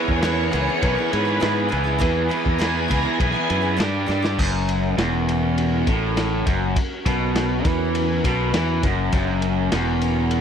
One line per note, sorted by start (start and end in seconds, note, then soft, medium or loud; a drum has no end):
0.00 0.19 E3 medium
0.00 0.20 B3 medium
0.00 0.20 E4 medium
0.00 0.21 G#4 medium
0.00 0.21 B4 medium
0.08 0.49 E2 medium
0.08 0.21 C#5 loud
0.08 kick medium
0.21 0.50 E3 loud
0.21 0.50 B3 loud
0.21 0.51 E4 loud
0.21 0.51 G#4 loud
0.21 0.52 B4 loud
0.21 0.37 C#5 loud
0.21 snare loud
0.21 ride loud
0.37 0.51 A#4 loud
0.51 0.67 C#2 loud
0.51 0.80 E3 medium
0.51 0.80 B3 medium
0.51 0.80 E4 loud
0.51 0.81 G#4 medium
0.51 0.82 B4 medium
0.51 0.67 C#5 medium
0.51 snare soft
0.51 ride medium
0.66 0.99 E4 soft
0.66 0.97 G#4 medium
0.66 0.95 B4 medium
0.66 0.82 C#5 loud
0.81 0.96 B1 loud
0.81 1.10 E3 medium
0.81 1.10 B3 medium
0.81 1.11 E4 medium
0.81 1.11 G#4 medium
0.81 0.96 A#4 loud
0.81 1.11 B4 loud
0.81 kick loud
0.81 ride medium
0.97 1.27 E4 soft
0.97 1.26 G#4 medium
0.97 1.24 B4 medium
0.97 1.12 C#5 medium
1.11 1.40 G#2 loud
1.11 1.40 E3 medium
1.11 1.40 B3 medium
1.11 1.40 E4 medium
1.11 1.41 G#4 medium
1.11 1.41 B4 loud
1.11 1.71 B4 loud
1.11 ride medium
1.25 1.40 E4 soft
1.25 1.40 G#4 medium
1.25 1.41 B4 medium
1.41 1.69 G#2 medium
1.41 1.68 E3 loud
1.41 1.69 B3 loud
1.41 1.69 E4 loud
1.41 1.69 G#4 loud
1.41 1.70 B4 loud
1.41 snare loud
1.41 ride loud
1.70 1.99 C#2 loud
1.70 1.99 E3 medium
1.70 1.99 B3 medium
1.70 2.00 E4 medium
1.70 2.00 G#4 medium
1.70 2.00 B4 medium
1.70 ride medium
1.84 1.98 E4 medium
1.84 1.99 G#4 medium
1.84 1.99 B4 medium
2.00 2.28 E2 loud
2.00 2.28 E3 loud
2.00 2.29 B3 loud
2.00 2.29 E4 loud
2.00 2.30 G#4 loud
2.00 2.30 B4 loud
2.00 kick loud
2.00 ride loud
2.29 2.58 E3 medium
2.29 2.59 B3 medium
2.29 2.59 E4 medium
2.29 2.60 G#4 medium
2.29 2.60 B4 loud
2.29 2.45 G#5 medium
2.29 ride medium
2.46 2.86 E2 medium
2.46 2.60 A#5 loud
2.46 kick medium
2.59 2.88 E3 loud
2.59 2.89 B3 loud
2.59 2.89 E4 loud
2.59 2.90 G#4 loud
2.59 2.90 B4 loud
2.59 2.75 G#5 medium
2.59 snare loud
2.59 ride loud
2.76 2.89 G#5 loud
2.90 3.04 C#2 loud
2.90 3.19 E3 medium
2.90 3.19 B3 loud
2.90 3.20 E4 loud
2.90 3.20 G#4 loud
2.90 3.20 B4 loud
2.90 3.05 A#5 medium
2.90 kick medium
2.90 ride medium
3.03 3.34 E4 soft
3.03 3.33 G#4 soft
3.03 3.31 B4 medium
3.07 3.20 G#5 medium
3.20 3.34 B1 loud
3.20 3.48 E3 medium
3.20 3.48 B3 medium
3.20 3.49 E4 medium
3.20 3.49 G#4 loud
3.20 3.49 B4 loud
3.20 3.78 G#5 loud
3.20 kick loud
3.20 ride loud
3.32 3.63 E4 soft
3.32 3.62 G#4 medium
3.32 3.60 B4 medium
3.49 3.77 F#2 loud
3.49 3.77 E3 medium
3.49 3.78 B3 medium
3.49 3.78 E4 medium
3.49 3.78 G#4 loud
3.49 3.78 B4 loud
3.49 ride medium
3.61 3.77 E4 soft
3.61 3.78 G#4 medium
3.61 3.78 B4 medium
3.79 4.06 G2 medium
3.79 4.06 G3 loud
3.79 4.07 D4 loud
3.79 4.07 G4 loud
3.79 4.07 D5 loud
3.79 snare loud
3.79 ride loud
4.08 4.36 G2 loud
4.08 4.36 G3 medium
4.08 4.36 D4 loud
4.08 4.37 G4 loud
4.08 4.37 D5 loud
4.08 snare medium
4.22 4.39 D4 medium
4.22 4.39 G4 medium
4.22 4.38 D5 medium
4.22 snare loud
4.38 4.94 F#1 loud
4.38 4.96 F#2 loud
4.38 6.73 C#4 medium
4.38 6.74 F#4 medium
4.38 6.74 A#4 medium
4.38 kick loud
4.38 crash loud
4.69 ride medium
4.97 5.83 E1 loud
4.97 5.86 E2 loud
4.97 snare loud
4.97 ride loud
5.29 snare soft
5.29 ride medium
5.58 ride medium
5.87 6.42 A1 loud
5.87 6.46 A2 loud
5.87 kick loud
5.87 ride medium
6.17 snare loud
6.17 ride loud
6.46 6.74 F#1 loud
6.46 6.75 F#2 loud
6.46 kick loud
6.46 ride medium
6.76 9.11 C#4 medium
6.76 9.11 F#4 medium
6.76 9.10 A#4 medium
6.76 kick loud
6.76 ride loud
7.06 7.61 B1 loud
7.06 7.66 B2 loud
7.06 kick loud
7.06 ride medium
7.35 snare loud
7.35 ride loud
7.65 8.20 E2 loud
7.65 8.23 E3 loud
7.65 kick loud
7.65 ride medium
7.95 ride loud
8.24 8.52 B1 loud
8.24 8.53 B2 loud
8.24 kick loud
8.24 ride medium
8.53 8.81 E2 loud
8.53 8.82 E3 loud
8.53 snare loud
8.53 ride loud
8.83 9.11 F#1 loud
8.83 9.12 F#2 loud
8.83 kick loud
8.83 ride medium
9.12 9.68 F#1 loud
9.12 9.72 F#2 loud
9.12 10.41 C#4 medium
9.12 10.41 F#4 medium
9.12 10.41 A#4 medium
9.12 kick loud
9.12 ride loud
9.42 ride medium
9.72 10.41 E1 loud
9.72 10.41 E2 loud
9.72 snare loud
9.72 ride loud
10.01 snare soft
10.01 ride medium
10.31 ride loud